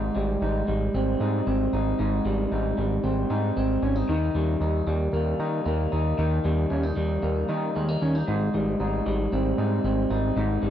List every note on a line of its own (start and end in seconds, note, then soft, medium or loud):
0.00 0.11 G#1 loud
0.00 1.98 G#2 medium
0.00 1.29 D#3 medium
0.00 0.15 G3 medium
0.00 0.42 D#4 medium
0.15 0.37 G#1 loud
0.15 0.67 G3 medium
0.42 0.63 G#1 loud
0.42 1.20 D#4 medium
0.68 0.89 G#1 loud
0.68 2.25 G3 medium
0.94 1.16 G#1 medium
0.94 1.46 C4 medium
1.20 1.42 G#2 loud
1.20 1.73 D#4 medium
1.47 1.68 G#1 loud
1.47 3.02 C4 medium
1.73 1.94 G#1 loud
1.73 1.99 D#4 medium
1.99 2.21 G#1 loud
1.99 4.09 G#2 medium
1.99 2.51 D#4 medium
2.25 2.47 G#1 loud
2.25 2.77 G3 medium
2.52 2.73 G#1 loud
2.52 3.30 D#4 medium
2.78 2.99 G#1 loud
2.78 4.35 G3 medium
3.04 3.25 G#1 medium
3.04 3.56 C4 medium
3.30 3.52 G#2 loud
3.30 3.82 D#4 medium
3.57 3.78 G#1 loud
3.57 4.14 C4 medium
3.82 4.04 G#1 loud
3.82 3.96 C#4 medium
3.96 4.09 D#4 medium
4.09 4.30 D#2 loud
4.09 6.17 D#3 medium
4.09 4.61 D#4 medium
4.35 4.56 D#2 loud
4.35 4.87 G3 medium
4.61 4.82 D#2 loud
4.61 5.39 D#4 medium
4.87 5.08 D#2 loud
4.87 6.44 G3 medium
5.13 5.35 D#2 medium
5.13 5.65 A#3 medium
5.40 5.61 D#3 loud
5.40 5.91 D#4 medium
5.66 5.87 D#2 loud
5.66 7.21 A#3 medium
5.92 6.14 D#2 medium
5.92 6.18 D#4 medium
6.18 6.40 D#2 loud
6.18 9.68 D#3 medium
6.18 6.70 D#4 medium
6.44 6.66 D#2 loud
6.44 6.96 G3 medium
6.70 6.92 D#2 loud
6.70 6.83 C#4 medium
6.83 7.47 D#4 medium
6.96 7.18 D#2 loud
6.96 8.54 G3 medium
7.22 7.44 D#2 loud
7.22 7.75 A#3 medium
7.49 7.71 D#3 loud
7.49 8.01 D#4 medium
7.76 7.97 D#2 loud
7.76 7.89 G#3 medium
7.89 8.33 A#3 medium
8.02 8.23 D#2 loud
8.02 8.15 C#4 medium
8.15 8.27 D#4 medium
8.27 8.49 G#1 loud
8.27 10.36 G#2 medium
8.27 8.80 D#4 medium
8.54 8.76 G#1 loud
8.54 9.06 G3 medium
8.80 9.01 G#1 loud
8.80 9.58 D#4 medium
9.06 9.28 G#1 loud
9.06 10.62 G3 medium
9.32 9.54 G#1 loud
9.32 9.83 C4 medium
9.58 9.80 G#2 loud
9.58 10.10 D#4 medium
9.84 10.06 G#1 loud
9.84 10.70 C4 medium
10.10 10.32 G#1 loud
10.10 10.37 D#4 medium
10.37 10.58 G#1 loud
10.37 10.70 G#2 medium
10.37 10.70 D#4 medium
10.63 10.70 G#1 loud
10.63 10.70 G3 medium